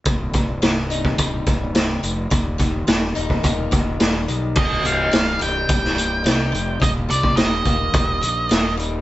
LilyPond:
<<
  \new Staff \with { instrumentName = "Lead electric guitar" } { \time 4/4 \key c \minor \tempo 4 = 106 r1 | r1 | ees''8 f''4 g''2~ g''8 | ees''8 d''8 ees''2~ ees''8 r8 | }
  \new Staff \with { instrumentName = "Steel-string acoustic guitar" } { \clef bass \time 4/4 \key c \minor c,8 g,8 c8 ees'8 g8 g,8 c8 g,8 | ees,8 ees8 g8 ees'8 bes8 ees8 g8 ees8 | c,8 c8 g,8 g8 g,8 g8 ees'8 c8 | ees,8 g8 ees8 bes8 ees8 bes8 ees'8 g8 | }
  \new Staff \with { instrumentName = "Fingered electric bass" } { \clef bass \time 4/4 \key c \minor c,,8 c,,8 c,,4 c,,8 c,,8 c,,8 f,,8 | ees,,4 ees,,8 ees,,8 ees,,8 ees,,8 ees,,8 b,,8 | c,,8 c,,8 c,,8 c,,8 c,,4 c,8 f,,8 | ees,,8 c,8 ees,,8 ees,,8 ees,,8 bes,,8 ees,,4 | }
  \new DrumStaff \with { instrumentName = "Drums" } \drummode { \time 4/4 <hh bd>8 <hh bd>8 <hh sn>8 hh16 bd16 <hh bd>8 <hh bd>8 <hh sn>8 hh8 | <hh bd>8 <hh bd>8 <hh sn>8 hh16 bd16 <hh bd>8 <hh bd>8 <hh sn>8 hh8 | <cymc bd>8 hh8 <hh sn>8 hh8 <hh bd>16 sn16 hh8 <hh sn>8 hh8 | <hh bd>8 hh16 bd16 <hh sn>8 <hh bd>8 <hh bd>8 hh8 <hh sn>8 hh8 | }
>>